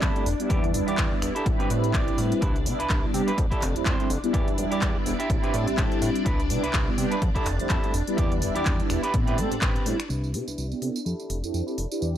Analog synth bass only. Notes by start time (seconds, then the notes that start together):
0.02 F2
0.26 F1
0.50 E2
0.74 E1
0.88 E2
0.98 E2
1.22 E1
1.46 A1
1.60 A2
1.70 A2
1.94 A1
2.18 A2
2.42 C2
2.66 C3
2.80 C2
2.90 C2
3.14 C3
3.38 F2
3.62 F1
3.76 F2
3.86 F2
4.10 F1
4.34 E2
4.58 E1
4.72 E2
4.82 E2
5.06 E1
5.30 A1
5.43 A2
5.54 A2
5.67 A1
5.78 A1
6.02 A2
6.26 C2
6.50 C3
6.64 C2
6.74 C2
6.98 C3
7.22 F2
7.46 F1
7.60 F2
7.70 F2
7.94 F1
8.18 E2
8.42 E1
8.56 E2
8.66 E2
8.90 E1
9.14 A1
9.38 A2
9.52 A1
9.62 A1
9.86 A2
10.10 C2
10.34 C3
10.48 C2
10.58 C2
10.82 C3
11.06 F2
11.30 F1
11.44 F2
11.54 F2
11.78 F1
12.02 E2